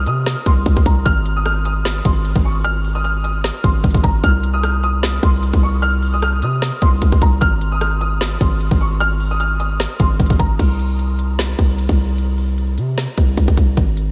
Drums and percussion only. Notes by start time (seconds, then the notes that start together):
0.06 closed hi-hat
0.26 snare, closed hi-hat
0.46 kick, closed hi-hat
0.66 kick, closed hi-hat
0.77 kick
0.86 kick, closed hi-hat
1.06 kick, closed hi-hat
1.26 closed hi-hat
1.46 cross-stick, closed hi-hat
1.65 closed hi-hat
1.85 snare, closed hi-hat
2.05 kick, closed hi-hat
2.25 closed hi-hat
2.36 kick
2.65 closed hi-hat
2.85 open hi-hat
3.05 closed hi-hat
3.24 closed hi-hat
3.44 snare, closed hi-hat
3.64 kick, closed hi-hat
3.84 kick, closed hi-hat
3.91 kick, closed hi-hat
3.97 closed hi-hat
4.04 kick, closed hi-hat
4.24 kick, closed hi-hat
4.44 closed hi-hat
4.63 cross-stick, closed hi-hat
4.83 closed hi-hat
5.03 snare, closed hi-hat
5.23 kick, closed hi-hat
5.43 closed hi-hat
5.53 kick
5.83 closed hi-hat
6.02 open hi-hat
6.22 cross-stick, closed hi-hat
6.42 closed hi-hat
6.62 snare, closed hi-hat
6.82 kick, closed hi-hat
7.02 kick, closed hi-hat
7.12 kick
7.22 kick, closed hi-hat
7.41 kick, closed hi-hat
7.61 closed hi-hat
7.81 cross-stick, closed hi-hat
8.01 closed hi-hat
8.21 snare, closed hi-hat
8.41 kick, closed hi-hat
8.61 closed hi-hat
8.71 kick
9.01 closed hi-hat
9.20 open hi-hat
9.40 closed hi-hat
9.60 closed hi-hat
9.80 snare, closed hi-hat
10.00 kick, closed hi-hat
10.20 kick, closed hi-hat
10.26 kick, closed hi-hat
10.33 closed hi-hat
10.40 kick, closed hi-hat
10.59 kick, closed hi-hat, crash
10.79 closed hi-hat
10.99 closed hi-hat
11.19 closed hi-hat
11.39 snare, closed hi-hat
11.59 kick, closed hi-hat
11.79 closed hi-hat
11.89 kick
12.18 closed hi-hat
12.38 open hi-hat
12.58 closed hi-hat
12.78 closed hi-hat
12.98 snare, closed hi-hat
13.18 kick, closed hi-hat
13.37 kick, closed hi-hat
13.48 kick
13.57 kick, closed hi-hat
13.77 kick, closed hi-hat
13.97 closed hi-hat